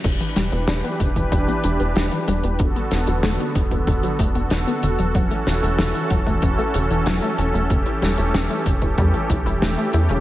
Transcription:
0.04 E1 D3 E3 D4 G4 B4, kick, closed hi-hat, crash
0.20 E3, closed hi-hat
0.36 E1 G3, snare, closed hi-hat
0.52 E1 B3, closed hi-hat
0.68 E1 D4, snare, closed hi-hat
0.84 B3, closed hi-hat
1.00 E1 D3, kick, closed hi-hat
1.16 E1 E3, kick, closed hi-hat
1.32 E1 G3, kick, closed hi-hat
1.48 B3, closed hi-hat
1.64 E1 D4, closed hi-hat
1.80 E1 B3, closed hi-hat
1.96 E1 D3, snare, closed hi-hat
2.11 E3, closed hi-hat
2.28 E1 G3, closed hi-hat
2.44 E1 B3, closed hi-hat
2.59 E1 D3 B3 D4 F#4 A4, kick, closed hi-hat
2.76 B3, closed hi-hat
2.91 E1 D3, snare, closed hi-hat
3.07 E1 F#3, closed hi-hat
3.23 E1 A3, snare, closed hi-hat
3.40 B3, closed hi-hat
3.55 E1 D4, kick, closed hi-hat
3.71 E1 B3, kick, closed hi-hat
3.87 E1 D3, kick, closed hi-hat
4.03 F#3, closed hi-hat
4.19 E1 A3, kick, closed hi-hat
4.35 E1 B3, closed hi-hat
4.50 E1 D4, snare, closed hi-hat
4.67 B3, closed hi-hat
4.83 E1 D3, closed hi-hat
4.99 E1 F#3, closed hi-hat
5.15 E1 E3 F#3 C#4, kick, closed hi-hat
5.31 A3, closed hi-hat
5.47 E1 C#4, snare, closed hi-hat
5.63 E1 A3, closed hi-hat
5.79 E1 C#3, snare, closed hi-hat
5.95 E3, closed hi-hat
6.10 E1 F#3, kick, closed hi-hat
6.26 E1 A3, kick, closed hi-hat
6.42 E1 C#4, kick, closed hi-hat
6.59 A3, closed hi-hat
6.74 E1 C#3, closed hi-hat
6.90 E1 E3, closed hi-hat
7.06 E1 F#3, snare, closed hi-hat
7.22 A3, closed hi-hat
7.38 E1 C#4, closed hi-hat
7.54 E1 A3, closed hi-hat
7.70 E1 C#3 E3 G4, kick, closed hi-hat
7.86 E3, closed hi-hat
8.02 E1 G3, snare, closed hi-hat
8.18 E1 A3, closed hi-hat
8.34 E1 C#4, snare, closed hi-hat
8.50 A3, closed hi-hat
8.66 E1 C#3, kick, closed hi-hat
8.82 E1 E3, kick, closed hi-hat
8.98 E2 G3, kick, closed hi-hat
9.14 A3, closed hi-hat
9.30 B1 E3, kick, closed hi-hat
9.46 E1 E4, closed hi-hat
9.62 E1 A3, snare, closed hi-hat
9.78 A3, closed hi-hat
9.93 E2 E4, closed hi-hat
10.09 E1 C#3, closed hi-hat

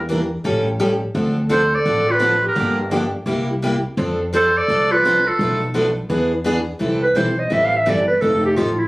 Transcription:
Already playing: E2
0.09 E3 G3 A#3 D4 E4 G4 A#4
0.45 A1 F3 G3 C#4 G4 A4
0.81 F3 G3 C#4 G4 A4
1.15 D2 D3 F3 C4 D4 A4
1.49 D3 F3 C4 D4 A4 C5
1.73 A4 D5
1.86 A1 D3 F3 C4 D4 A4
2.09 F4 B4
2.20 D3 F3 C4 D4 A4
2.44 G4
2.48 A#4
2.56 G1 D3 F3 A#3 D4 G4
2.90 D3 F3 A#3 D4 G4
3.26 C2 C3 G3 A#3 E4 G4
3.62 C3 G3 A#3 E4 G4
3.97 F2 F3 C4 D4 A4
4.33 F3 C4 D4 A4 C5
4.57 A4 D5
4.68 C2 F3 C4 D4 A4
4.91 F4 B4
5.03 F3 C4 D4 A4
5.25 F4 A4
5.39 B1 B2 F3 A3 D4 A4 B4
5.74 B2 F3 A3 D4 A4 B4
6.09 E2 E3 B3 D4 G#4 B4
6.45 E3 B3 D4 G#4 B4
6.81 C2 E3 G3 C4 E4 A4
7.03 B4
7.15 B1 E3 G3 C4 E4 A4 C5
7.39 D#5
7.52 A1 E3 G3 C4 E4 A4 E5
7.65 F5
7.76 E5
7.87 G1 E3 G3 C4 E4 A4 D5
8.07 B4
8.21 F1 F3 C4 D#4 A4
8.45 G4
8.56 A1 F3 C4 D#4 F4 A4
8.79 E4

